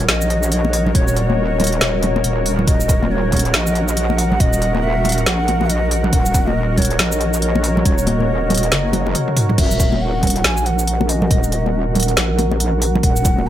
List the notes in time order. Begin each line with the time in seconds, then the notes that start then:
Already playing: F#4 A#4 C#5
0.09 A#1 D#5, snare, closed hi-hat
0.21 shaker
0.30 closed hi-hat
0.43 shaker
0.52 D#5, closed hi-hat
0.65 muted conga
0.73 open hi-hat
0.86 low conga
0.95 D#1 C#5, kick, closed hi-hat
1.08 shaker
1.16 D#5, closed hi-hat
1.30 high conga
1.60 closed hi-hat, muted conga, low conga
1.64 closed hi-hat
1.67 closed hi-hat
1.72 closed hi-hat
1.81 D#1, snare, closed hi-hat
2.03 closed hi-hat, muted conga, low conga
2.16 muted conga
2.24 D#1, closed hi-hat
2.46 open hi-hat
2.59 low conga
2.67 D#1 D#5 F#5, kick, closed hi-hat
2.80 shaker
2.89 kick, closed hi-hat, shaker
3.03 high conga
3.11 C#5
3.32 kick, closed hi-hat, low conga
3.37 closed hi-hat
3.39 closed hi-hat
3.45 closed hi-hat
3.54 A#1 D#5 E5, snare, closed hi-hat
3.67 shaker
3.75 closed hi-hat
3.88 D#5, shaker
3.97 closed hi-hat
4.10 muted conga
4.18 F#5, open hi-hat
4.32 low conga
4.40 D#1 D#5, kick, closed hi-hat
4.53 shaker
4.62 closed hi-hat
4.75 high conga
4.83 E5
5.04 closed hi-hat, muted conga, low conga
5.09 closed hi-hat
5.12 closed hi-hat
5.18 closed hi-hat
5.26 A#1 F#5, snare, closed hi-hat
5.48 closed hi-hat, muted conga
5.61 muted conga
5.70 D#5, closed hi-hat
5.91 open hi-hat
6.04 low conga
6.13 D#1 C#5 F#5, kick, closed hi-hat
6.26 shaker
6.34 kick, closed hi-hat, shaker
6.47 D#5, high conga
6.77 C#5, kick, closed hi-hat, low conga
6.82 closed hi-hat
6.85 closed hi-hat
6.90 closed hi-hat
6.99 A#1 D#5, snare, closed hi-hat
7.12 shaker
7.21 closed hi-hat
7.33 shaker
7.42 D#5, closed hi-hat
7.55 muted conga
7.64 open hi-hat
7.77 low conga
7.85 D#1 C#5, kick, closed hi-hat
7.98 shaker
8.07 D#5, closed hi-hat, high conga
8.20 high conga
8.50 closed hi-hat, muted conga, low conga
8.54 closed hi-hat
8.57 closed hi-hat
8.63 closed hi-hat
8.72 F#1, snare, closed hi-hat
8.93 closed hi-hat, high tom, muted conga, high conga, low conga
9.06 high tom, muted conga
9.15 closed hi-hat, mid tom
9.28 mid tom
9.37 mid tom, open hi-hat
9.49 mid tom, low conga
9.58 D#1 E5 F#5, kick, closed hi-hat, crash
9.71 shaker
9.80 kick, closed hi-hat, shaker
9.92 high conga
10.01 F#5
10.23 kick, closed hi-hat, low conga
10.27 closed hi-hat
10.30 closed hi-hat
10.36 closed hi-hat
10.44 A#1 G#5, snare, closed hi-hat
10.57 shaker
10.66 F#5, closed hi-hat
10.79 shaker
10.87 closed hi-hat
11.01 muted conga
11.09 D#5, open hi-hat
11.22 low conga
11.31 D#1, kick, closed hi-hat
11.43 shaker
11.52 closed hi-hat
11.66 high conga
11.95 closed hi-hat, muted conga, low conga
12.00 closed hi-hat
12.03 closed hi-hat
12.08 closed hi-hat
12.17 A#1, snare, closed hi-hat
12.39 closed hi-hat, muted conga
12.51 muted conga
12.60 closed hi-hat
12.82 open hi-hat
12.96 low conga
13.03 D#1 C#5 F#5, kick, closed hi-hat
13.16 shaker
13.25 kick, closed hi-hat, shaker
13.38 high conga